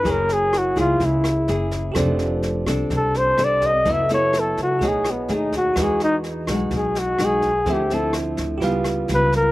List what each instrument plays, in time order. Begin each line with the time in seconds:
Already playing: flugelhorn B4
0.03 upright bass F#1, nylon-string guitar F#3 A#3 E4 G#4, tine electric piano E4 G#4, kick, snare
0.08 tine electric piano A#4 C#5, flugelhorn A#4
0.29 flugelhorn G#4, snare
0.53 cross-stick, snare
0.58 flugelhorn F#4
0.76 upright bass C#2, nylon-string guitar A#3 E4 G#4, kick, snare
0.80 flugelhorn F4
1.00 upright bass C#2, nylon-string guitar C#3, kick, snare
1.05 flugelhorn E4
1.24 cross-stick, snare
1.48 upright bass F#1, nylon-string guitar A#3 E4 G#4, snare
1.71 kick, snare
1.92 upright bass F1, nylon-string guitar F3 C4, tine electric piano G4 A4, kick, cross-stick, snare
1.96 nylon-string guitar D4 A4, tine electric piano C5 D5
2.19 snare
2.43 snare
2.66 upright bass C2, nylon-string guitar C4 D4 A4, kick, cross-stick, snare
2.90 upright bass C2, nylon-string guitar C3, kick, snare
2.97 flugelhorn A4
3.15 flugelhorn C5, snare
3.38 upright bass C2, nylon-string guitar C4 D4 A4, cross-stick, snare
3.44 flugelhorn D5
3.61 tine electric piano G4 A4 C5 D5, kick, snare
3.66 flugelhorn D#5
3.85 upright bass F#1, nylon-string guitar F#3 B3 E4 A4, tine electric piano A4 B4, kick, snare
3.90 tine electric piano E5, flugelhorn E5
4.09 nylon-string guitar B3 E4 A4, snare
4.14 flugelhorn C#5
4.33 cross-stick, snare
4.40 flugelhorn A4
4.57 upright bass C#2, kick, snare
4.63 flugelhorn F#4
4.79 upright bass B1, nylon-string guitar B2 A3 D#4 G#4, tine electric piano G#4, kick, snare
4.83 tine electric piano C#5 D#5
4.88 flugelhorn G#4
5.04 cross-stick, snare
5.11 flugelhorn B3
5.28 upright bass D#2, nylon-string guitar A3 D#4 G#4, snare
5.35 flugelhorn D#4
5.52 kick, snare
5.57 flugelhorn F#4
5.74 upright bass E2, nylon-string guitar E3, tine electric piano F#4 G#4 B4, kick, cross-stick, snare
5.78 nylon-string guitar G#3 D#4 F#4, tine electric piano D#5
5.83 flugelhorn G#4
6.00 flugelhorn D#4, snare
6.24 snare
6.47 upright bass B1, nylon-string guitar G#3 D#4 F#4, kick, cross-stick, snare
6.71 upright bass B1, nylon-string guitar B2, kick, snare
6.77 flugelhorn G#4
6.95 flugelhorn F#4, snare
7.19 upright bass B1, nylon-string guitar G#3 D#4 F#4, cross-stick, snare
7.25 flugelhorn G#4
7.42 kick, snare
7.66 upright bass D2, nylon-string guitar D3 F3 C4 E4, tine electric piano A4 C5, kick, snare
7.70 flugelhorn G4, tine electric piano E5
7.90 nylon-string guitar F3 C4 E4, snare
7.94 flugelhorn A4
8.13 cross-stick, snare
8.37 upright bass D2, kick, snare
8.58 upright bass C#2, tine electric piano F4 G4, kick, snare
8.62 nylon-string guitar C#3 G3 B3 F4, tine electric piano B4 F5
8.84 cross-stick, snare
9.08 upright bass C#2, nylon-string guitar G3 B3 F4, snare
9.14 flugelhorn B4
9.32 flugelhorn A#4, kick, snare